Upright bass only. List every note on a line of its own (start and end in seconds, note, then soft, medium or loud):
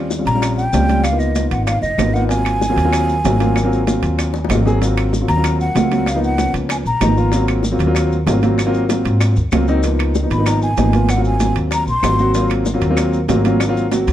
0.00 0.20 D#2 medium
0.25 0.70 A#1 medium
0.73 1.46 C#2 medium
1.51 1.81 G#1 medium
1.82 1.97 F#1 medium
1.98 2.71 G#1 medium
2.76 3.21 D#2 medium
3.25 3.97 G#1 medium
4.02 4.46 D#2 medium
4.49 5.22 G#1 medium
5.28 5.72 D#2 loud
5.75 6.48 C#2 medium
6.54 6.83 C#2 medium
6.85 7.00 A#1 medium
7.01 7.74 G#1 medium
7.79 8.23 D#2 loud
8.26 9.00 G#1 medium
9.05 9.34 G#2 medium
9.37 9.51 D#2 medium
9.52 10.25 C#2 medium
10.30 10.74 G#1 loud
10.77 11.50 G#1 medium
11.56 11.85 D#2 medium
11.87 12.02 A#1 medium
12.03 12.76 G#1 medium
12.81 13.25 D#2 loud
13.28 14.01 G#1 medium
14.07 14.13 D#2 loud